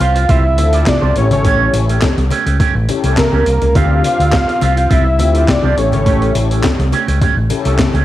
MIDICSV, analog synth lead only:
0, 0, Header, 1, 2, 480
1, 0, Start_track
1, 0, Key_signature, -1, "minor"
1, 0, Tempo, 576923
1, 1201, Time_signature, 4, 2, 24, 8
1, 6697, End_track
2, 0, Start_track
2, 0, Title_t, "Analog synth lead"
2, 0, Program_c, 0, 81
2, 0, Note_on_c, 0, 77, 123
2, 253, Note_on_c, 0, 76, 113
2, 265, Note_off_c, 0, 77, 0
2, 736, Note_on_c, 0, 74, 98
2, 749, Note_off_c, 0, 76, 0
2, 969, Note_off_c, 0, 74, 0
2, 978, Note_on_c, 0, 73, 89
2, 1089, Note_off_c, 0, 73, 0
2, 1105, Note_on_c, 0, 73, 86
2, 1544, Note_off_c, 0, 73, 0
2, 2647, Note_on_c, 0, 70, 102
2, 3130, Note_on_c, 0, 77, 127
2, 3143, Note_off_c, 0, 70, 0
2, 4093, Note_on_c, 0, 76, 105
2, 4106, Note_off_c, 0, 77, 0
2, 4576, Note_on_c, 0, 74, 93
2, 4588, Note_off_c, 0, 76, 0
2, 4812, Note_on_c, 0, 73, 93
2, 4825, Note_off_c, 0, 74, 0
2, 4932, Note_off_c, 0, 73, 0
2, 4937, Note_on_c, 0, 73, 92
2, 5380, Note_off_c, 0, 73, 0
2, 6697, End_track
0, 0, End_of_file